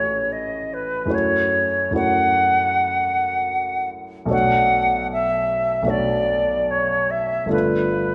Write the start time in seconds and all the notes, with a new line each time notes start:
Already playing: A1 A3 E4 F#4 C#5
0.32 D#5
0.73 B4
1.06 F#2 A3 E4
1.10 F#4 C#5
1.14 C#5
1.91 F#2 A3 E4 F#4
1.95 C#5 F#5
4.25 B1 A3 D4
4.30 F#4 C#5 F#5
5.12 E5
5.82 B1 A3 D4
5.86 F#4 C#5 D5
6.70 C#5
7.10 E5
7.46 G1 A3 D4
7.50 F4 A4 B4